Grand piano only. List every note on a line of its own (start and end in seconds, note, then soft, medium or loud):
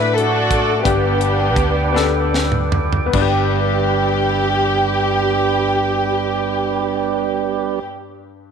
0.00 0.88 D3 soft
0.00 0.87 A3 medium
0.00 0.85 D4 medium
0.00 0.64 E4 medium
0.00 0.87 F#4 medium
0.83 1.89 G2 soft
0.83 1.69 B3 medium
0.83 1.69 D4 soft
0.83 1.70 G4 medium
1.92 2.86 B3 medium
1.92 2.87 D4 medium
1.96 2.88 A4 medium
3.06 7.71 B3 medium
3.13 7.79 G2 medium
3.13 7.79 D4 medium
3.21 7.87 G4 medium